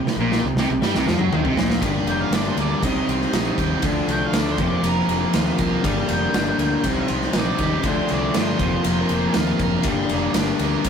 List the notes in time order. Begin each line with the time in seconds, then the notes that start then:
Already playing: C4 G4 G5
0.05 muted fingered electric bass stroke, muted overdriven electric guitar stroke, muted distorted electric guitar stroke, snare
0.16 A#1
0.20 A#2
0.32 snare
0.44 C2 C3
0.55 C2 C3, snare
0.59 C3
0.70 C2 C3
0.81 G2 G3, snare
0.95 C2 C3, snare
1.07 F2 F3, snare
1.17 F#2 F#3, mid tom
1.32 D#2 D#3, floor tom
1.44 C2 C3, floor tom
1.57 A#1 A#2, snare
1.70 snare
1.82 G1 G2 D3 G3 A#3 D4, kick, ride
2.05 F1 A#3 G5, ride
2.21 F5
2.31 G1 D4 D5, snare, ride
2.48 C5
2.57 D2 A#3 D5, ride
2.82 C2 C3 G3 C4 D#4 D#5, kick, ride
3.07 C2 C4, ride
3.22 snare
3.33 A#1 D#4, snare, ride
3.58 D#2 G4, kick, ride
3.82 D2 D3 F3 A3 D4, kick, ride
4.08 C2 A3 G5, ride
4.25 F5
4.32 D2 D4, snare, ride
4.40 D5
4.51 C5
4.58 F1 F2 C3 F3 A#3 C4, kick, ride
4.67 D5
4.83 F1 A#4, ride
4.89 A#4
5.07 F1 A#3, ride
5.33 D#2 F4 A#4 D5, snare, ride
5.58 C2 A#4 C5 F5, kick, ride
5.82 G1 G2 D3 G3 A#3 D4 D5 G5, kick, ride
6.09 F1 A#3 G5, ride
6.34 G1 D4, snare, ride
6.58 D2 A#3, ride
6.84 C2 C3 G3 C4 D#4, kick, ride
7.08 C2 C4, ride
7.22 snare
7.33 A#1 D#4 D5, snare, ride
7.58 D#2 G4, kick, ride
7.83 D2 D3 F3 A3 D4 C5, kick, ride
8.09 C2 A3, ride
8.14 D5
8.34 G2 D4, snare, ride
8.39 C5
8.58 F1 F2 C3 F3 A#3 C4, kick, ride
8.84 F1 A#4, ride
9.09 F1 A#3, ride
9.34 D#2 F4, snare, ride
9.59 F#1 A#4, kick, ride
9.83 G1 G2 D3 G3 A#3 D4 G4, kick, ride
9.88 D5
10.09 F1 A#3, ride
10.34 G1 D4, snare, ride
10.59 D2 A#3, ride
10.82 C2 C3 C4 D#4 D5, kick, ride
10.86 G3